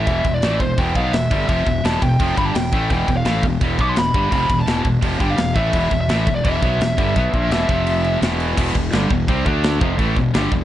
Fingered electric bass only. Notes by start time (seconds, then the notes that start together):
0.07 E1
0.25 E1
0.43 A1
0.60 E1
0.78 E1
0.96 B1
1.14 E1
1.31 G1
1.49 F1
1.67 E1
1.84 E1
2.02 E1
2.20 F1
2.38 G1
2.55 E1
2.72 A1
2.91 E1
3.08 E1
3.26 A1
3.43 E1
3.61 E1
3.79 B1
3.97 E1
4.14 G1
4.32 F1
4.49 E1
4.67 E1
4.85 E1
5.02 F1
5.20 G1
5.39 E1
5.55 A1
5.73 E1
5.91 E1
6.08 A1
6.27 E1
6.45 E1
6.62 B1
6.80 E1
6.98 G1
7.16 B1
7.33 A#1
7.51 E1
7.69 F1
8.22 E1
8.58 E1
8.75 E1
8.94 G1
9.11 E1
9.28 C2
9.46 D2
9.81 F1
9.99 A1
10.17 E1
10.35 G1
10.52 E1